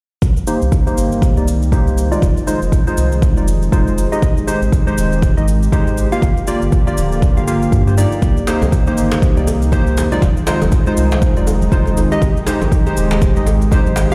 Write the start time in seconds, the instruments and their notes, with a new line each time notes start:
0.22 sub bass C2, analog synth pad C3 D#3 G3 A#3 D#4, kick, cabasa
0.37 cabasa
0.47 synth keys A#3 D#4 G4 C5, cabasa
0.62 sub bass C2, cabasa
0.72 kick, cabasa
0.87 synth keys A#3 D#4 G4 C5, cabasa
0.97 sub bass G1, cabasa
1.12 cabasa
1.22 kick, cabasa
1.37 sub bass C2, synth keys A#3 D#4 G4 D5, cabasa
1.48 cabasa
1.62 cabasa
1.72 sub bass C2, synth keys A#3 D#4 G4 C5, kick, cabasa
1.87 cabasa
1.98 cabasa
2.12 synth keys G#3 D#4 F4 D5, cabasa
2.22 sub bass F1, analog synth pad F3 G#3, kick, cabasa
2.37 cabasa
2.47 synth keys G#3 D#4 F4 C5, cabasa
2.62 sub bass F1, cabasa
2.72 kick, cabasa
2.87 synth keys G#3 D#4 F4 C5, cabasa
2.97 sub bass C2, cabasa
3.12 cabasa
3.22 kick, cabasa
3.36 sub bass F1, synth keys G#3 D#4 F4 D5, cabasa
3.48 cabasa
3.62 cabasa
3.72 sub bass F1, synth keys G#3 D#4 F4 C5, kick, cabasa
3.88 cabasa
3.98 cabasa
4.12 synth keys G#3 D#4 G4 D#5, cabasa
4.22 sub bass G#1, analog synth pad D#3 G4, kick, cabasa
4.37 cabasa
4.47 synth keys G#3 D#4 G4 C5, cabasa
4.62 sub bass G#1, cabasa
4.72 kick, cabasa
4.87 synth keys G#3 D#4 G4 C5, cabasa
4.97 sub bass D#1, cabasa
5.12 cabasa
5.22 kick, cabasa
5.37 sub bass G#1, synth keys G#3 D#4 G4 D#5, cabasa
5.48 cabasa
5.63 cabasa
5.72 sub bass G#1, synth keys G#3 D#4 G4 C5, kick, cabasa
5.87 cabasa
5.97 cabasa
6.12 synth keys A#3 F4 G4 F5, cabasa
6.22 sub bass G1, analog synth pad D3 F3 A#3 F4, kick, cabasa
6.37 cabasa
6.47 synth keys A#3 F4 G4 D5, cabasa
6.62 sub bass G1, cabasa
6.72 kick, cabasa
6.87 synth keys A#3 F4 G4 D5, cabasa
6.97 sub bass D1, cabasa
7.12 cabasa
7.22 kick, cabasa
7.37 sub bass G1, synth keys A#3 F4 G4 F5, cabasa
7.47 synth keys A#3 F4 G4 F5, cabasa
7.62 cabasa
7.72 sub bass G2, kick, cabasa
7.87 synth keys A#3 F4 G4 C5, cabasa
7.98 synth keys A#3 D#4 G4 D5, cabasa
8.12 cabasa
8.22 sub bass C2, analog synth pad C3 D#3 A#3 D#4, kick, muted conga, high conga, cabasa
8.37 cabasa
8.47 synth keys A#3 D#4 G4 C5, djembe slap, muted conga, cabasa
8.62 sub bass C2, djembe tone, high conga, cabasa
8.72 kick, cabasa
8.87 synth keys A#3 D#4 G4 C5, muted conga, cabasa
8.97 sub bass G1, cabasa
9.12 djembe slap, muted conga, cabasa
9.22 kick, cabasa
9.37 sub bass C2, synth keys A#3 D#4 G4 D5, muted conga, cabasa
9.47 djembe tone, cabasa
9.62 cabasa
9.72 sub bass C2, synth keys A#3 D#4 G4 C5, kick, muted conga, djembe tone, low conga, cabasa
9.87 high conga, cabasa
9.97 djembe slap, muted conga, low conga, cabasa
10.12 synth keys G#3 D#4 F4 D5, high conga, cabasa
10.22 sub bass F1, analog synth pad F3 G#3 D#4, kick, djembe slap, muted conga, high conga, cabasa
10.37 cabasa
10.47 synth keys G#3 D#4 F4 C5, djembe slap, muted conga, cabasa
10.62 sub bass F1, djembe tone, high conga, low conga, cabasa
10.72 kick, cabasa
10.87 synth keys G#3 D#4 F4 C5, muted conga, cabasa
10.97 sub bass C2, cabasa
11.12 djembe slap, muted conga, cabasa
11.22 kick, high conga, low conga, cabasa
11.37 sub bass F1, synth keys G#3 D#4 F4 D5, muted conga, cabasa
11.47 djembe tone, cabasa
11.62 high conga, cabasa
11.71 sub bass F1, synth keys G#3 D#4 F4 C5, kick, muted conga, cabasa
11.86 djembe tone, cabasa
11.97 muted conga, djembe tone, high conga, cabasa
12.12 synth keys G#3 D#4 G4 D#5, cabasa
12.22 sub bass G#1, analog synth pad G#3 G4, kick, muted conga, high conga, cabasa
12.37 cabasa
12.47 synth keys G#3 D#4 G4 C5, djembe slap, muted conga, cabasa
12.61 sub bass G#1, djembe tone, high conga, cabasa
12.72 kick, cabasa
12.86 synth keys G#3 D#4 G4 C5, muted conga, cabasa
12.97 sub bass D#1, cabasa
13.11 djembe slap, muted conga, cabasa
13.22 kick, cabasa
13.36 sub bass G#1, synth keys G#3 D#4 G4 D#5, muted conga, cabasa
13.46 djembe tone, cabasa
13.62 cabasa
13.71 sub bass G#1, synth keys G#3 D#4 G4 C5, kick, muted conga, djembe tone, low conga, cabasa
13.87 high conga, cabasa
13.96 djembe slap, muted conga, low conga, cabasa